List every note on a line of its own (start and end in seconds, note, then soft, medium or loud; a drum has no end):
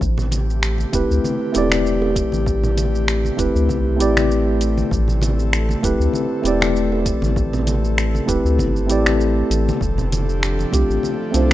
0.01 0.86 A1 loud
0.01 9.78 A3 medium
0.01 11.54 C4 medium
0.01 4.88 G4 medium
0.01 kick loud
0.01 shaker soft
0.18 low conga medium
0.18 shaker soft
0.32 closed hi-hat medium
0.32 high conga medium
0.32 shaker medium
0.50 shaker soft
0.63 finger snap medium
0.63 shaker soft
0.78 high conga medium
0.78 shaker soft
0.92 1.04 E1 loud
0.92 1.51 A3 medium
0.92 1.51 C4 medium
0.92 1.52 E4 medium
0.92 1.52 G4 medium
0.92 1.52 B4 medium
0.92 kick loud
0.92 closed hi-hat medium
0.92 high bongo soft
0.92 shaker medium
1.10 1.19 D2 loud
1.10 shaker soft
1.24 high conga medium
1.24 shaker soft
1.52 2.24 E1 medium
1.52 3.34 A3 medium
1.52 3.35 C4 medium
1.52 3.35 E4 medium
1.52 3.36 G4 medium
1.52 closed hi-hat medium
1.52 high bongo medium
1.52 shaker medium
1.58 3.37 D5 loud
1.70 finger snap medium
1.70 high conga medium
1.70 shaker soft
1.86 shaker soft
2.02 high bongo medium
2.16 kick loud
2.16 closed hi-hat medium
2.16 shaker medium
2.32 3.31 A1 medium
2.32 high conga medium
2.32 shaker soft
2.46 kick loud
2.46 shaker soft
2.63 low conga medium
2.63 shaker soft
2.77 closed hi-hat medium
2.77 high conga medium
2.77 shaker medium
2.95 shaker soft
3.08 finger snap medium
3.08 shaker soft
3.25 high conga medium
3.25 shaker soft
3.37 3.49 E1 loud
3.37 3.95 A3 medium
3.37 3.96 C4 medium
3.37 3.96 E4 medium
3.37 3.97 G4 medium
3.37 3.97 B4 medium
3.37 kick loud
3.37 closed hi-hat medium
3.37 shaker medium
3.55 3.70 D2 medium
3.55 shaker soft
3.69 4.01 C2 medium
3.69 kick medium
3.69 high conga medium
3.69 shaker soft
3.96 4.84 A1 medium
3.96 5.78 A3 medium
3.96 5.79 C4 medium
3.96 5.80 E4 medium
4.00 5.81 G4 medium
4.00 5.81 D5 loud
4.00 closed hi-hat medium
4.00 shaker medium
4.17 finger snap medium
4.17 high conga medium
4.17 shaker soft
4.31 shaker soft
4.61 closed hi-hat medium
4.61 shaker medium
4.78 high conga medium
4.78 shaker soft
4.91 5.75 A1 loud
4.91 11.54 A4 medium
4.91 kick loud
4.91 shaker soft
5.08 low conga medium
5.08 shaker soft
5.22 closed hi-hat medium
5.22 high conga loud
5.22 shaker medium
5.39 shaker soft
5.53 finger snap medium
5.53 shaker soft
5.69 high conga medium
5.69 shaker soft
5.82 5.94 E1 loud
5.82 6.41 A3 medium
5.82 6.41 C4 medium
5.82 6.41 E4 medium
5.82 6.42 G4 medium
5.82 6.42 B4 loud
5.82 kick loud
5.82 closed hi-hat medium
5.82 high bongo soft
5.82 shaker medium
6.00 6.09 D2 medium
6.00 shaker soft
6.13 high conga medium
6.13 shaker soft
6.42 7.13 E1 medium
6.42 8.24 A3 medium
6.42 8.24 C4 medium
6.42 8.25 E4 medium
6.42 closed hi-hat medium
6.42 high bongo medium
6.46 8.26 G4 medium
6.46 8.27 D5 loud
6.46 shaker medium
6.61 finger snap medium
6.61 high conga medium
6.61 shaker soft
6.76 shaker soft
6.92 high bongo medium
7.06 kick loud
7.06 closed hi-hat medium
7.06 shaker medium
7.22 8.20 A1 medium
7.22 high conga medium
7.22 shaker soft
7.36 kick loud
7.36 shaker soft
7.53 low conga medium
7.53 shaker soft
7.67 closed hi-hat medium
7.67 high conga loud
7.67 shaker medium
7.85 shaker soft
7.98 finger snap medium
7.98 shaker soft
8.15 high conga medium
8.15 shaker soft
8.26 8.39 E1 loud
8.26 8.85 A3 medium
8.26 8.86 C4 medium
8.26 8.86 E4 medium
8.26 8.86 G4 medium
8.26 8.86 B4 medium
8.26 kick loud
8.26 closed hi-hat medium
8.26 high bongo soft
8.26 shaker medium
8.45 8.60 D2 loud
8.45 shaker soft
8.58 8.91 G1 medium
8.58 kick medium
8.58 high conga medium
8.58 shaker soft
8.76 shaker soft
8.87 9.43 A1 medium
8.87 9.78 A3 medium
8.87 9.79 C4 medium
8.87 9.80 E4 medium
8.87 closed hi-hat medium
8.87 shaker medium
8.91 9.80 G4 medium
8.91 9.81 D5 medium
9.06 finger snap medium
9.06 high conga medium
9.06 shaker soft
9.21 shaker soft
9.50 9.71 A1 medium
9.50 closed hi-hat medium
9.50 shaker medium
9.69 high conga medium
9.69 shaker soft
9.80 10.65 F1 loud
9.80 11.54 F3 medium
9.80 11.54 D4 medium
9.80 11.54 G4 medium
9.80 kick loud
9.80 shaker soft
9.98 low conga medium
9.98 shaker soft
10.12 closed hi-hat medium
10.12 high conga medium
10.12 shaker medium
10.29 shaker soft
10.43 finger snap medium
10.43 shaker soft
10.59 high conga medium
10.59 shaker soft
10.71 10.84 C2 loud
10.71 11.30 A3 medium
10.71 11.31 C4 medium
10.71 11.31 D4 medium
10.71 11.31 F4 medium
10.71 11.32 G4 medium
10.71 kick loud
10.71 closed hi-hat medium
10.71 high bongo soft
10.71 shaker medium
10.90 10.99 A1 loud
10.90 shaker soft
11.03 high conga medium
11.03 shaker soft
11.31 11.54 C2 medium
11.31 11.54 A3 medium
11.31 11.54 C4 medium
11.31 11.54 D4 medium
11.31 closed hi-hat medium
11.31 high bongo medium
11.31 shaker medium
11.35 11.54 F4 medium
11.35 11.54 C5 medium
11.50 high conga medium